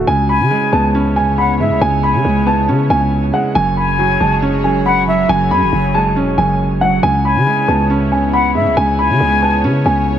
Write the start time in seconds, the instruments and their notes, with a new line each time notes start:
0.07 808-style bass C#2, felt piano C#3, analog synth pad C#3 B3 E4 C#5, grand piano G#5
0.29 flute G#5, grand piano B5
0.40 808-style bass C#3
0.51 felt piano G#3
0.72 808-style bass C#2, felt piano B3, grand piano A5
0.95 felt piano C#4
1.16 felt piano C#3, grand piano G#5
1.38 flute F#5, grand piano B5
1.60 808-style bass G#2, felt piano G#3, flute E5
1.70 808-style bass C#2
1.81 808-style bass C#2, felt piano C#3, grand piano G#5
2.03 flute G#5, grand piano B5
2.14 808-style bass C#3
2.25 808-style bass C#2, felt piano G#3
2.46 felt piano B3, grand piano A5
2.68 808-style bass C#3, felt piano C#4
2.90 808-style bass C#2, felt piano C#3, grand piano G#5
3.33 felt piano G#3, grand piano F#5
3.55 808-style bass F#1, felt piano F#2, analog synth pad F#3 F#4 G#4 C#5, grand piano G#5
3.77 flute G#5, grand piano B5
3.99 felt piano F#3
4.20 808-style bass F#1, felt piano G#3, grand piano A5
4.42 felt piano C#4
4.64 felt piano F#2, grand piano G#5
4.86 flute F#5, grand piano B5
5.07 felt piano F#3, flute E5
5.29 808-style bass F#1, felt piano F#2, grand piano G#5
5.51 808-style bass F#2, flute G#5, grand piano B5
5.62 808-style bass F#1
5.73 808-style bass F#1, felt piano F#3
5.94 felt piano G#3, grand piano A5
6.16 808-style bass E1, felt piano C#4
6.38 808-style bass F#1, felt piano F#2, grand piano G#5
6.81 felt piano F#3, flute F#5, grand piano F#5
7.03 808-style bass C#2, felt piano C#3, analog synth pad C#3 B3 E4 C#5, grand piano G#5
7.25 flute G#5, grand piano B5
7.36 808-style bass C#3
7.47 felt piano G#3
7.68 808-style bass C#2, felt piano B3, grand piano A5
7.90 felt piano C#4
8.12 felt piano C#3, grand piano G#5
8.33 flute F#5, grand piano B5
8.55 808-style bass G#2, felt piano G#3, flute E5
8.66 808-style bass C#2
8.77 808-style bass C#2, felt piano C#3, grand piano G#5
8.99 flute G#5, grand piano B5
9.10 808-style bass C#3
9.20 808-style bass C#2, felt piano G#3
9.42 felt piano B3, grand piano A5
9.64 808-style bass C#3, felt piano C#4
9.86 808-style bass C#2, felt piano C#3, grand piano G#5